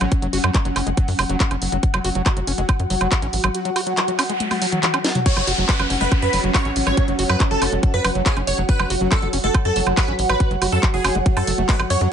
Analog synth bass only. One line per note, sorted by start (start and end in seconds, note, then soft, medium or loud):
0.01 0.07 A1 medium
0.22 0.29 F#1 medium
0.33 0.39 F#1 loud
0.44 0.50 F#2 medium
0.65 0.72 F#1 medium
0.76 0.82 F#1 loud
0.87 0.93 F#1 medium
1.08 1.14 F#2 medium
1.19 1.25 F#1 loud
1.29 1.36 F#1 medium
1.51 1.57 F#1 medium
1.62 1.68 F#1 medium
1.72 1.79 F#1 medium
1.94 2.00 F#1 medium
2.05 2.11 F#1 loud
2.15 2.22 F#1 medium
2.37 2.43 F#1 medium
2.47 2.54 F#1 loud
2.58 2.64 F#1 medium
2.79 2.86 F#2 medium
2.90 2.97 F#1 loud
3.01 3.07 F#1 medium
3.22 3.29 A1 medium
3.33 3.39 A1 loud
3.44 3.50 A1 medium
5.37 5.43 F#1 medium
5.47 5.54 F#1 loud
5.58 5.64 F#1 medium
5.79 5.86 F#1 medium
5.90 5.97 F#1 loud
6.01 6.07 F#1 medium
6.22 6.29 F#2 medium
6.33 6.39 F#1 loud
6.44 6.50 F#1 loud
6.65 6.72 A1 medium
6.76 6.82 A1 loud
6.87 6.93 A1 medium
7.08 7.14 F#1 medium
7.19 7.25 F#1 loud
7.29 7.36 F#2 medium
7.51 7.57 F#1 medium
7.62 7.68 F#1 loud
7.72 7.79 F#1 medium
7.94 8.00 F#2 medium
8.04 8.11 F#1 loud
8.15 8.21 F#1 medium
8.37 8.43 F#1 medium
8.47 8.54 F#1 loud
8.58 8.64 F#1 medium
8.80 8.86 F#1 medium
8.90 8.97 F#1 loud
9.01 9.07 F#1 medium
9.22 9.29 F#1 medium
9.33 9.39 F#1 loud
9.44 9.50 F#1 medium
9.65 9.71 F#2 medium
9.76 9.82 F#1 loud
9.87 9.93 F#1 medium
10.08 10.14 A1 medium
10.19 10.25 A1 loud
10.29 10.36 A1 medium
10.51 10.57 F#1 medium
10.62 10.68 F#1 loud
10.72 10.79 F#2 medium
10.94 11.00 F#1 medium
11.04 11.11 F#1 loud
11.15 11.21 F#1 medium
11.37 11.43 F#2 medium
11.47 11.54 F#1 loud
11.58 11.64 F#1 medium
11.79 11.86 G#1 medium
11.90 11.97 F#2 loud
12.01 12.07 F#2 medium